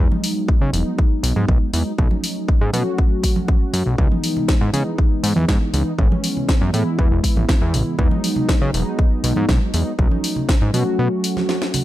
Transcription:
Already playing: analog polysynth F#3
0.00 analog polysynth G#3 B3 D#4
0.12 high conga
0.24 open hi-hat
0.48 kick
0.61 analog synth bass C#3
0.73 analog synth bass E1, analog polysynth F#3 G#3 B3 D#4, open hi-hat, high conga
0.99 kick
1.23 analog synth bass B1, open hi-hat
1.36 analog synth bass G#2, high conga
1.48 analog synth bass B1, kick
1.73 analog synth bass E2, analog polysynth F#3 G#3 B3 D#4, open hi-hat
1.97 analog synth bass B1, analog polysynth F#3 A3 C#4 D#4, kick
2.11 high conga
2.24 open hi-hat
2.48 kick
2.61 analog synth bass G#2
2.72 analog synth bass B2, analog polysynth F#3 A3 C#4 F#4, open hi-hat, high conga
2.98 kick
3.23 kick, open hi-hat
3.36 high conga
3.48 kick
3.73 analog synth bass F#2, open hi-hat
3.86 analog synth bass B1
3.97 analog synth bass C#2, analog polysynth E3 G#3 B3 D#4, kick
4.12 high conga
4.24 open hi-hat
4.37 low conga
4.48 kick, snare
4.61 analog synth bass G#2
4.72 analog synth bass C#3, analog polysynth E3 G#3 B3 D#4, open hi-hat, high conga
4.98 kick
5.23 analog synth bass G#2, open hi-hat
5.36 analog synth bass E2, high conga
5.48 analog synth bass G#2, kick, snare
5.73 analog synth bass C#2, analog polysynth E3 G#3 B3 D#4, open hi-hat
5.97 analog synth bass A1, analog polysynth E3 G#3 B3 C#4, kick
6.12 high conga
6.24 open hi-hat
6.37 low conga
6.49 kick, snare
6.61 analog synth bass F#2
6.72 analog synth bass A2, analog polysynth E3 G#3 B3 E4, open hi-hat, high conga
6.99 analog synth bass E2, kick
7.12 analog synth bass E1
7.24 kick, open hi-hat
7.36 analog synth bass A1, high conga
7.49 kick, snare
7.62 analog synth bass E2
7.74 analog synth bass A1, open hi-hat, low conga
7.97 analog synth bass E2, analog polysynth F#3 G#3 B3 D#4, kick
8.11 high conga
8.24 open hi-hat
8.36 low conga
8.49 kick, snare
8.62 analog synth bass C#3
8.73 analog synth bass E1, analog polysynth F#3 G#3 B3 D#4, open hi-hat, high conga
8.99 kick
9.24 analog synth bass B1, open hi-hat
9.36 analog synth bass G#2, high conga
9.49 analog synth bass B1, kick, snare
9.73 analog synth bass E2, analog polysynth F#3 G#3 B3 D#4, open hi-hat
9.98 analog synth bass B1, analog polysynth F#3 A3 C#4 D#4, kick
10.11 high conga
10.24 open hi-hat
10.36 low conga
10.49 kick, snare
10.62 analog synth bass G#2
10.73 analog synth bass B2, analog polysynth F#3 A3 C#4 F#4, open hi-hat, high conga
10.99 analog synth bass B2
11.24 open hi-hat
11.37 snare, high conga
11.49 snare
11.62 snare
11.74 open hi-hat, low conga

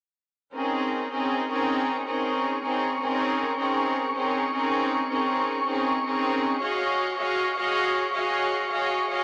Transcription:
0.54 string section C4 C#4 D#4 G#4 A#4, synth texture C#6
1.11 string section C4 C#4 D#4 G#4 A#4
1.49 string section C4 C#4 D#4 G#4 A#4
2.06 string section C4 C#4 D#4 G#4 A#4
2.63 string section C4 C#4 D#4 G#4 A#4
3.01 string section C4 C#4 D#4 G#4 A#4
3.58 string section C4 C#4 D#4 G#4 A#4
4.15 string section C4 C#4 D#4 G#4 A#4
4.53 string section C4 C#4 D#4 G#4 A#4
5.10 string section C4 C#4 D#4 G#4 A#4
5.67 string section C4 C#4 D#4 G#4 A#4
6.05 string section C4 C#4 D#4 G#4 A#4
6.62 string section F#4 G#4 C#5 D#5 F5
7.18 string section F#4 G#4 C#5 D#5 F5
7.57 string section F#4 G#4 C#5 D#5 F5
8.14 string section F#4 G#4 C#5 D#5 F5
8.71 string section F#4 G#4 C#5 D#5 F5
9.09 string section F#4 G#4 C#5 D#5 F5

